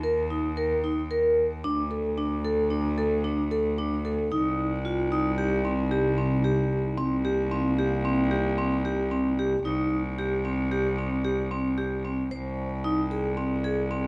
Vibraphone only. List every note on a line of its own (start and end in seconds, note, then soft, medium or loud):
0.03 0.20 A#4 medium
0.30 0.47 D#4 medium
0.57 0.74 A#4 medium
0.84 1.01 D#4 medium
1.11 1.44 A#4 medium
1.64 1.81 D4 medium
1.91 2.07 A4 medium
2.18 2.34 D4 medium
2.45 2.61 A4 medium
2.71 2.87 D4 medium
2.98 3.14 A4 medium
3.24 3.41 D4 medium
3.51 3.68 A4 medium
3.78 3.95 D4 medium
4.05 4.21 A4 medium
4.32 4.65 D#4 medium
4.85 5.02 F4 medium
5.12 5.28 D#4 medium
5.38 5.55 G4 medium
5.65 5.81 C4 medium
5.91 6.08 G4 medium
6.18 6.34 C4 medium
6.44 6.78 G4 medium
6.98 7.14 C4 medium
7.25 7.41 G4 medium
7.52 7.68 C4 medium
7.79 7.95 G4 medium
8.05 8.21 C4 medium
8.31 8.48 G4 medium
8.58 8.74 C4 medium
8.85 9.01 G4 medium
9.11 9.28 C4 medium
9.39 9.55 G4 medium
9.65 9.98 D#4 medium
10.18 10.35 G4 medium
10.45 10.61 C4 medium
10.72 10.88 G4 medium
10.98 11.15 C4 medium
11.25 11.41 G4 medium
11.51 11.68 C4 medium
11.78 11.94 G4 medium
12.05 12.21 C4 medium
12.31 12.64 C5 medium
12.84 13.01 D#4 medium
13.11 13.28 G#4 medium
13.37 13.54 C4 medium
13.64 13.81 G#4 medium
13.91 14.07 C4 medium